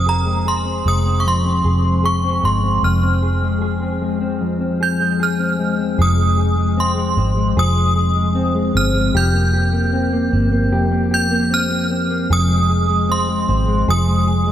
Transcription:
Already playing: F1 F2 C4
0.06 G#4 A#5
0.26 G#3
0.46 G#4 C6
0.65 C4
0.86 F1 G#3 D#6
1.05 C4
1.20 C#6
1.25 F2 C6
1.45 C4
1.64 F1 G#4
1.85 G#3
2.04 G#4 C#6
2.24 C4
2.43 G1 G#3 C6
2.64 C4
2.83 F1 F2 F6
3.03 C4
3.22 G#4
3.42 G#3
3.62 G#4
3.82 C4
4.02 G#3
4.21 C4
4.41 F2
4.61 C4
4.81 G#4 G6
5.00 G#3
5.20 G#4 F6
5.40 C4
5.59 G#3
5.79 C4
5.98 F1 F2 G#4 D#6
6.18 G#3
6.38 G#4
6.57 G#3
6.77 C4 C6
6.97 G#3
7.17 G#1 C4
7.37 G#3
7.56 F1 F2 G#4 D#6
7.76 G#3
7.96 G#4
8.15 G#3
8.35 C4
8.55 G#3
8.74 G1 C4 F6
8.94 G#3
9.14 F1 F2 G4 G6
9.34 A#3
9.53 G4
9.73 A#3
9.93 C4
10.13 A#3
10.32 G1 C4
10.52 A#3
10.72 F1 F2 G4
10.91 A#3
11.11 G4 G6
11.31 A#3
11.51 C4 F6
11.71 A#3
11.91 C4
12.10 A#3
12.30 F1 F2 G#4 D#6
12.50 G#3
12.69 G#4
12.89 G#3
13.09 C4 C6
13.29 G#3
13.49 G#1 C4
13.68 G#3
13.88 F1 F2 G#4 D#6
14.08 G#3
14.27 G#4
14.47 G#3

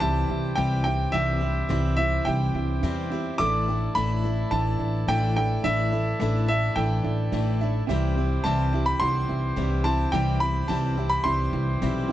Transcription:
Already playing: C2 C3 E4 G4 C5 E5 G5
0.00 C2 E3 G3 C4 E4 G4 E5 A5
0.29 C2 C4 E4 G4 E5
0.55 C2 C3 E3 G3 C4 E4 G4 E5 G5
0.84 G3 C4 E4 G4 E5 G5
1.12 C2 C3 E3 G3 C4 E4 G4 E5
1.41 G3 C4 E4 G4 E5
1.69 C2 C3 E3 G3 C4 E4 G4 E5
1.97 G3 C4 E4 G4 E5
2.25 C2 E3 G3 C4 E4 G4 E5 G5
2.54 C2 C4 E4 G4 E5
2.81 E2 C3 E3 G3 C4 E4 G4 E5
3.10 C4 E4 G4 E5
3.14 G3
3.38 A1 A2 E3 A3 D4 E4 A4 D5 E5 A5 D6
3.67 A3 D4 E4 A4 G5
3.95 A1 A2 E3 A3 D4 E4 A4 E5 B5
4.23 A3 D4 E4 A4 E5
4.51 A1 E3 A3 D4 E4 A4 E5 A5
4.79 A1 D4 E4 A4 E5
5.07 A1 A2 E3 A3 D4 E4 A4 E5 G5
5.34 A3 D4 E4 A4 E5 G5
5.63 A1 A2 E3 A3 D4 E4 A4 E5
5.91 A3 D4 E4 A4 E5
6.19 A1 A2 E3 A3 D4 E4 A4 E5
6.47 A3 D4 E4 A4 E5
6.75 A1 E3 A3 D4 E4 A4 E5 G5
6.79 E4
7.03 A1 D4 E4 A4 E5
7.31 A1 A2 E3 A3 D4 E4 A4 E5
7.59 D4 E4 A4 E5
7.64 A3
7.87 C2 C3 E3 G3 C4 E4 G4 C5 E5 G5
7.91 E4
8.15 C4 E4 G4 E5
8.20 G3
8.44 C2 C3 E3 G3 C4 E4 G4 E5 A5
8.73 G3 C4 E4 G4 E5
8.86 B5
9.00 C2 E3 G3 C4 E4 G4 F#5 C6
9.28 C2 C4 E4 G4 E5
9.56 C2 C3 E3 G3 C4 E4 G4 E5
9.84 G3 C4 E4 G4 E5 A5
10.12 C2 C3 E3 G3 C4 E4 G4 E5 G5
10.40 G3 C4 E4 G4 B5
10.68 C2 C3 E3 G3 C4 E4 G4 E5 A5
10.97 G3 C4 E4 G4 E5
11.09 B5
11.24 C2 E3 G3 C4 E4 G4 E5 C6
11.28 E4
11.52 C2 C4 E4 G4 E5
11.81 B1 C3 E3 G3 C4 E4 G4 E5
12.08 C4 E4 G4

